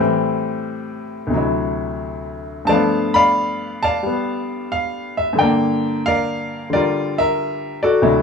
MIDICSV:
0, 0, Header, 1, 2, 480
1, 0, Start_track
1, 0, Tempo, 677966
1, 1897, Time_signature, 4, 2, 24, 8
1, 3344, Tempo, 657895
1, 5897, End_track
2, 0, Start_track
2, 0, Title_t, "Upright piano"
2, 0, Program_c, 0, 0
2, 0, Note_on_c, 0, 45, 49
2, 0, Note_on_c, 0, 52, 47
2, 0, Note_on_c, 0, 55, 46
2, 5, Note_on_c, 0, 60, 50
2, 899, Note_on_c, 0, 38, 42
2, 917, Note_off_c, 0, 45, 0
2, 921, Note_on_c, 0, 48, 41
2, 925, Note_off_c, 0, 52, 0
2, 931, Note_off_c, 0, 55, 0
2, 938, Note_off_c, 0, 60, 0
2, 946, Note_on_c, 0, 54, 39
2, 974, Note_on_c, 0, 64, 46
2, 1876, Note_on_c, 0, 43, 45
2, 1883, Note_off_c, 0, 38, 0
2, 1890, Note_on_c, 0, 81, 81
2, 1893, Note_on_c, 0, 53, 43
2, 1895, Note_off_c, 0, 48, 0
2, 1904, Note_on_c, 0, 57, 44
2, 1907, Note_off_c, 0, 54, 0
2, 1907, Note_on_c, 0, 74, 58
2, 1909, Note_on_c, 0, 77, 53
2, 1918, Note_on_c, 0, 59, 49
2, 1921, Note_off_c, 0, 64, 0
2, 2224, Note_off_c, 0, 74, 0
2, 2224, Note_on_c, 0, 83, 87
2, 2226, Note_off_c, 0, 77, 0
2, 2234, Note_on_c, 0, 74, 61
2, 2237, Note_on_c, 0, 77, 68
2, 2241, Note_off_c, 0, 81, 0
2, 2708, Note_on_c, 0, 81, 82
2, 2709, Note_off_c, 0, 74, 0
2, 2710, Note_off_c, 0, 77, 0
2, 2720, Note_on_c, 0, 74, 53
2, 2721, Note_on_c, 0, 77, 59
2, 2729, Note_off_c, 0, 83, 0
2, 2852, Note_on_c, 0, 55, 38
2, 2867, Note_off_c, 0, 59, 0
2, 2878, Note_on_c, 0, 59, 42
2, 3329, Note_off_c, 0, 77, 0
2, 3340, Note_on_c, 0, 77, 71
2, 3358, Note_off_c, 0, 81, 0
2, 3648, Note_off_c, 0, 74, 0
2, 3652, Note_off_c, 0, 77, 0
2, 3673, Note_on_c, 0, 76, 67
2, 3774, Note_off_c, 0, 43, 0
2, 3785, Note_on_c, 0, 43, 49
2, 3805, Note_on_c, 0, 50, 47
2, 3814, Note_off_c, 0, 76, 0
2, 3818, Note_off_c, 0, 55, 0
2, 3825, Note_off_c, 0, 53, 0
2, 3828, Note_on_c, 0, 79, 72
2, 3831, Note_off_c, 0, 57, 0
2, 3832, Note_off_c, 0, 59, 0
2, 3835, Note_on_c, 0, 70, 54
2, 3839, Note_on_c, 0, 74, 51
2, 3861, Note_on_c, 0, 58, 54
2, 4318, Note_on_c, 0, 77, 84
2, 4321, Note_off_c, 0, 70, 0
2, 4321, Note_off_c, 0, 74, 0
2, 4325, Note_off_c, 0, 79, 0
2, 4332, Note_on_c, 0, 70, 58
2, 4332, Note_on_c, 0, 74, 57
2, 4770, Note_off_c, 0, 77, 0
2, 4773, Note_off_c, 0, 50, 0
2, 4784, Note_on_c, 0, 50, 37
2, 4798, Note_off_c, 0, 74, 0
2, 4801, Note_off_c, 0, 70, 0
2, 4808, Note_on_c, 0, 55, 46
2, 4809, Note_on_c, 0, 74, 73
2, 4812, Note_on_c, 0, 70, 50
2, 4818, Note_on_c, 0, 65, 53
2, 5138, Note_off_c, 0, 70, 0
2, 5139, Note_on_c, 0, 76, 83
2, 5144, Note_off_c, 0, 74, 0
2, 5149, Note_on_c, 0, 70, 58
2, 5579, Note_off_c, 0, 76, 0
2, 5608, Note_on_c, 0, 74, 68
2, 5615, Note_on_c, 0, 69, 50
2, 5618, Note_on_c, 0, 66, 51
2, 5727, Note_off_c, 0, 43, 0
2, 5729, Note_off_c, 0, 70, 0
2, 5730, Note_off_c, 0, 65, 0
2, 5742, Note_off_c, 0, 50, 0
2, 5746, Note_on_c, 0, 38, 46
2, 5750, Note_on_c, 0, 48, 47
2, 5754, Note_off_c, 0, 55, 0
2, 5755, Note_on_c, 0, 54, 42
2, 5756, Note_on_c, 0, 64, 56
2, 5764, Note_off_c, 0, 58, 0
2, 5897, Note_off_c, 0, 38, 0
2, 5897, Note_off_c, 0, 48, 0
2, 5897, Note_off_c, 0, 54, 0
2, 5897, Note_off_c, 0, 64, 0
2, 5897, Note_off_c, 0, 66, 0
2, 5897, Note_off_c, 0, 69, 0
2, 5897, Note_off_c, 0, 74, 0
2, 5897, End_track
0, 0, End_of_file